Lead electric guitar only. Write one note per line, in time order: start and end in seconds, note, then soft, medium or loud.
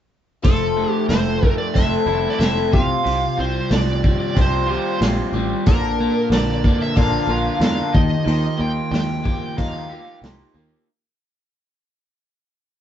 0.44 0.90 A4 medium
0.90 1.05 G4 medium
1.09 1.55 C5 medium
1.58 1.75 D5 medium
1.74 2.34 E5 medium
2.30 2.39 D5 medium
2.39 2.73 E5 medium
2.74 3.40 F5 loud
3.40 3.69 C5 medium
3.73 4.39 D5 medium
4.41 5.00 C5 medium
5.68 6.28 A#4 medium
6.33 6.83 D5 medium
6.82 6.96 E5 medium
6.96 7.61 F5 medium
7.62 7.95 F5 medium
7.94 8.61 D#5 medium
8.61 8.91 G5 medium
8.92 9.57 G5 medium
9.58 10.18 F5 medium